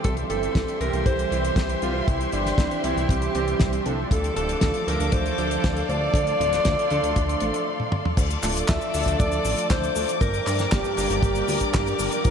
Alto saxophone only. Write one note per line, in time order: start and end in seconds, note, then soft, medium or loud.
0.04 0.16 A4 loud
0.30 0.77 A4 loud
0.81 1.04 A#4 loud
1.06 1.53 C5 loud
1.57 1.81 C5 loud
1.82 2.09 F4 medium
2.08 2.35 E4 medium
2.33 2.86 D4 loud
2.84 3.11 E4 medium
3.10 3.86 G4 medium
4.11 4.35 A4 medium
4.37 4.89 A4 medium
4.88 5.14 A#4 medium
5.13 5.91 C5 loud
5.89 7.67 D5 loud
8.69 9.19 E5 loud
9.20 9.67 D5 loud
9.70 10.18 C5 loud
10.21 10.73 A#4 loud
10.72 11.73 G4 loud
11.74 12.13 G4 medium
12.12 12.30 A#4 medium